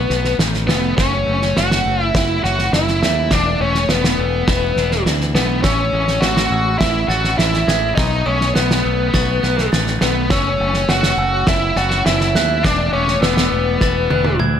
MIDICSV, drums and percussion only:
0, 0, Header, 1, 2, 480
1, 0, Start_track
1, 0, Key_signature, 3, "minor"
1, 0, Tempo, 583658
1, 807, Time_signature, 4, 2, 24, 8
1, 12006, End_track
2, 0, Start_track
2, 0, Title_t, "Drums"
2, 82, Note_on_c, 9, 38, 26
2, 164, Note_off_c, 9, 38, 0
2, 202, Note_on_c, 9, 38, 27
2, 284, Note_off_c, 9, 38, 0
2, 323, Note_on_c, 9, 38, 72
2, 406, Note_off_c, 9, 38, 0
2, 445, Note_on_c, 9, 38, 29
2, 527, Note_off_c, 9, 38, 0
2, 567, Note_on_c, 9, 38, 78
2, 649, Note_off_c, 9, 38, 0
2, 805, Note_on_c, 9, 36, 81
2, 806, Note_on_c, 9, 38, 88
2, 887, Note_off_c, 9, 36, 0
2, 889, Note_off_c, 9, 38, 0
2, 1168, Note_on_c, 9, 38, 30
2, 1250, Note_off_c, 9, 38, 0
2, 1288, Note_on_c, 9, 38, 69
2, 1370, Note_off_c, 9, 38, 0
2, 1410, Note_on_c, 9, 38, 68
2, 1492, Note_off_c, 9, 38, 0
2, 1766, Note_on_c, 9, 36, 94
2, 1767, Note_on_c, 9, 38, 88
2, 1848, Note_off_c, 9, 36, 0
2, 1849, Note_off_c, 9, 38, 0
2, 2012, Note_on_c, 9, 38, 25
2, 2094, Note_off_c, 9, 38, 0
2, 2128, Note_on_c, 9, 38, 30
2, 2211, Note_off_c, 9, 38, 0
2, 2246, Note_on_c, 9, 38, 70
2, 2329, Note_off_c, 9, 38, 0
2, 2366, Note_on_c, 9, 38, 27
2, 2449, Note_off_c, 9, 38, 0
2, 2488, Note_on_c, 9, 38, 69
2, 2571, Note_off_c, 9, 38, 0
2, 2720, Note_on_c, 9, 38, 88
2, 2723, Note_on_c, 9, 36, 81
2, 2802, Note_off_c, 9, 38, 0
2, 2806, Note_off_c, 9, 36, 0
2, 3083, Note_on_c, 9, 38, 30
2, 3165, Note_off_c, 9, 38, 0
2, 3198, Note_on_c, 9, 38, 72
2, 3280, Note_off_c, 9, 38, 0
2, 3325, Note_on_c, 9, 38, 67
2, 3408, Note_off_c, 9, 38, 0
2, 3681, Note_on_c, 9, 38, 83
2, 3682, Note_on_c, 9, 36, 95
2, 3763, Note_off_c, 9, 38, 0
2, 3764, Note_off_c, 9, 36, 0
2, 3922, Note_on_c, 9, 38, 26
2, 4005, Note_off_c, 9, 38, 0
2, 4043, Note_on_c, 9, 38, 27
2, 4125, Note_off_c, 9, 38, 0
2, 4162, Note_on_c, 9, 38, 71
2, 4244, Note_off_c, 9, 38, 0
2, 4283, Note_on_c, 9, 38, 30
2, 4365, Note_off_c, 9, 38, 0
2, 4402, Note_on_c, 9, 38, 67
2, 4484, Note_off_c, 9, 38, 0
2, 4636, Note_on_c, 9, 38, 81
2, 4639, Note_on_c, 9, 36, 90
2, 4718, Note_off_c, 9, 38, 0
2, 4721, Note_off_c, 9, 36, 0
2, 4999, Note_on_c, 9, 38, 29
2, 5081, Note_off_c, 9, 38, 0
2, 5114, Note_on_c, 9, 38, 74
2, 5196, Note_off_c, 9, 38, 0
2, 5238, Note_on_c, 9, 38, 70
2, 5321, Note_off_c, 9, 38, 0
2, 5597, Note_on_c, 9, 38, 94
2, 5598, Note_on_c, 9, 36, 94
2, 5680, Note_off_c, 9, 36, 0
2, 5680, Note_off_c, 9, 38, 0
2, 5838, Note_on_c, 9, 38, 25
2, 5920, Note_off_c, 9, 38, 0
2, 5957, Note_on_c, 9, 38, 28
2, 6039, Note_off_c, 9, 38, 0
2, 6077, Note_on_c, 9, 38, 73
2, 6160, Note_off_c, 9, 38, 0
2, 6199, Note_on_c, 9, 38, 30
2, 6281, Note_off_c, 9, 38, 0
2, 6318, Note_on_c, 9, 38, 66
2, 6400, Note_off_c, 9, 38, 0
2, 6559, Note_on_c, 9, 36, 92
2, 6559, Note_on_c, 9, 38, 97
2, 6641, Note_off_c, 9, 36, 0
2, 6641, Note_off_c, 9, 38, 0
2, 6917, Note_on_c, 9, 38, 31
2, 6999, Note_off_c, 9, 38, 0
2, 7036, Note_on_c, 9, 38, 74
2, 7118, Note_off_c, 9, 38, 0
2, 7160, Note_on_c, 9, 38, 73
2, 7243, Note_off_c, 9, 38, 0
2, 7514, Note_on_c, 9, 38, 92
2, 7518, Note_on_c, 9, 36, 91
2, 7596, Note_off_c, 9, 38, 0
2, 7600, Note_off_c, 9, 36, 0
2, 7757, Note_on_c, 9, 38, 28
2, 7839, Note_off_c, 9, 38, 0
2, 7880, Note_on_c, 9, 38, 30
2, 7962, Note_off_c, 9, 38, 0
2, 8000, Note_on_c, 9, 38, 82
2, 8082, Note_off_c, 9, 38, 0
2, 8117, Note_on_c, 9, 38, 33
2, 8199, Note_off_c, 9, 38, 0
2, 8233, Note_on_c, 9, 38, 73
2, 8315, Note_off_c, 9, 38, 0
2, 8472, Note_on_c, 9, 38, 92
2, 8475, Note_on_c, 9, 36, 96
2, 8554, Note_off_c, 9, 38, 0
2, 8557, Note_off_c, 9, 36, 0
2, 8832, Note_on_c, 9, 38, 31
2, 8914, Note_off_c, 9, 38, 0
2, 8954, Note_on_c, 9, 38, 79
2, 9036, Note_off_c, 9, 38, 0
2, 9071, Note_on_c, 9, 38, 69
2, 9153, Note_off_c, 9, 38, 0
2, 9431, Note_on_c, 9, 38, 88
2, 9436, Note_on_c, 9, 36, 85
2, 9514, Note_off_c, 9, 38, 0
2, 9519, Note_off_c, 9, 36, 0
2, 9674, Note_on_c, 9, 38, 26
2, 9756, Note_off_c, 9, 38, 0
2, 9792, Note_on_c, 9, 38, 28
2, 9874, Note_off_c, 9, 38, 0
2, 9917, Note_on_c, 9, 38, 74
2, 9999, Note_off_c, 9, 38, 0
2, 10039, Note_on_c, 9, 38, 31
2, 10121, Note_off_c, 9, 38, 0
2, 10159, Note_on_c, 9, 38, 74
2, 10242, Note_off_c, 9, 38, 0
2, 10399, Note_on_c, 9, 36, 90
2, 10399, Note_on_c, 9, 38, 95
2, 10481, Note_off_c, 9, 36, 0
2, 10482, Note_off_c, 9, 38, 0
2, 10756, Note_on_c, 9, 38, 32
2, 10838, Note_off_c, 9, 38, 0
2, 10878, Note_on_c, 9, 38, 80
2, 10960, Note_off_c, 9, 38, 0
2, 10998, Note_on_c, 9, 38, 69
2, 11080, Note_off_c, 9, 38, 0
2, 11355, Note_on_c, 9, 38, 51
2, 11360, Note_on_c, 9, 36, 86
2, 11437, Note_off_c, 9, 38, 0
2, 11442, Note_off_c, 9, 36, 0
2, 11599, Note_on_c, 9, 48, 55
2, 11681, Note_off_c, 9, 48, 0
2, 11715, Note_on_c, 9, 48, 57
2, 11797, Note_off_c, 9, 48, 0
2, 11838, Note_on_c, 9, 47, 66
2, 11920, Note_off_c, 9, 47, 0
2, 12006, End_track
0, 0, End_of_file